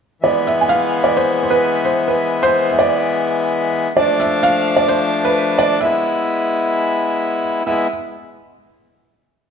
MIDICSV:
0, 0, Header, 1, 3, 480
1, 0, Start_track
1, 0, Tempo, 466200
1, 236, Time_signature, 4, 2, 24, 8
1, 5516, Tempo, 459067
1, 9850, End_track
2, 0, Start_track
2, 0, Title_t, "Felt piano"
2, 0, Program_c, 0, 0
2, 244, Note_on_c, 0, 74, 68
2, 485, Note_on_c, 0, 76, 70
2, 486, Note_off_c, 0, 74, 0
2, 627, Note_on_c, 0, 80, 57
2, 635, Note_off_c, 0, 76, 0
2, 708, Note_off_c, 0, 80, 0
2, 712, Note_on_c, 0, 77, 86
2, 1069, Note_on_c, 0, 74, 73
2, 1085, Note_off_c, 0, 77, 0
2, 1196, Note_off_c, 0, 74, 0
2, 1202, Note_on_c, 0, 72, 76
2, 1457, Note_off_c, 0, 72, 0
2, 1473, Note_on_c, 0, 72, 59
2, 1549, Note_on_c, 0, 71, 80
2, 1551, Note_off_c, 0, 72, 0
2, 1887, Note_off_c, 0, 71, 0
2, 1904, Note_on_c, 0, 72, 71
2, 2140, Note_on_c, 0, 71, 72
2, 2158, Note_off_c, 0, 72, 0
2, 2500, Note_on_c, 0, 72, 97
2, 2520, Note_off_c, 0, 71, 0
2, 2775, Note_off_c, 0, 72, 0
2, 2793, Note_on_c, 0, 76, 46
2, 2869, Note_on_c, 0, 74, 77
2, 2872, Note_off_c, 0, 76, 0
2, 3793, Note_off_c, 0, 74, 0
2, 4083, Note_on_c, 0, 74, 80
2, 4322, Note_on_c, 0, 76, 74
2, 4328, Note_off_c, 0, 74, 0
2, 4543, Note_off_c, 0, 76, 0
2, 4561, Note_on_c, 0, 77, 97
2, 4906, Note_on_c, 0, 74, 73
2, 4930, Note_off_c, 0, 77, 0
2, 5022, Note_off_c, 0, 74, 0
2, 5029, Note_on_c, 0, 72, 78
2, 5366, Note_off_c, 0, 72, 0
2, 5402, Note_on_c, 0, 71, 76
2, 5755, Note_on_c, 0, 74, 84
2, 5772, Note_off_c, 0, 71, 0
2, 5981, Note_off_c, 0, 74, 0
2, 5985, Note_on_c, 0, 76, 78
2, 7639, Note_off_c, 0, 76, 0
2, 7932, Note_on_c, 0, 76, 68
2, 8153, Note_off_c, 0, 76, 0
2, 9850, End_track
3, 0, Start_track
3, 0, Title_t, "Accordion"
3, 0, Program_c, 1, 21
3, 224, Note_on_c, 1, 52, 65
3, 235, Note_on_c, 1, 56, 60
3, 249, Note_on_c, 1, 59, 73
3, 4031, Note_off_c, 1, 52, 0
3, 4037, Note_off_c, 1, 56, 0
3, 4044, Note_off_c, 1, 59, 0
3, 4072, Note_on_c, 1, 53, 70
3, 4085, Note_on_c, 1, 57, 59
3, 4103, Note_on_c, 1, 62, 74
3, 5958, Note_off_c, 1, 53, 0
3, 5964, Note_off_c, 1, 57, 0
3, 5974, Note_off_c, 1, 62, 0
3, 5987, Note_on_c, 1, 56, 67
3, 6006, Note_on_c, 1, 59, 60
3, 6014, Note_on_c, 1, 64, 68
3, 7883, Note_off_c, 1, 56, 0
3, 7892, Note_off_c, 1, 59, 0
3, 7896, Note_off_c, 1, 64, 0
3, 7925, Note_on_c, 1, 59, 58
3, 7925, Note_on_c, 1, 64, 79
3, 7928, Note_on_c, 1, 56, 66
3, 8149, Note_off_c, 1, 59, 0
3, 8149, Note_off_c, 1, 64, 0
3, 8151, Note_off_c, 1, 56, 0
3, 9850, End_track
0, 0, End_of_file